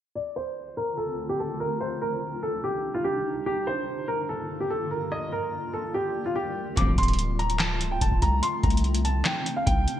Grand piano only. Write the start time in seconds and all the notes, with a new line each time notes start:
0.15 D5
0.36 C5
0.77 A#4
0.98 A4
1.29 G4
1.40 A4
1.60 A#4
1.81 C5
2.02 A#4
2.43 A4
2.64 G4
2.94 F4
3.04 G4
3.46 G4
3.67 C5
4.08 A#4
4.29 A4
4.60 G4
4.70 A4
4.91 A#4
5.12 D#5
5.32 A#4
5.74 A4
5.94 G4
6.26 F4
6.36 G4
6.77 D6
6.98 C6
7.39 A#5
7.60 A5
7.91 G5
8.02 A5
8.22 A#5
8.43 C6
8.64 A#5
9.05 A5
9.26 G5
9.56 F5
9.66 G5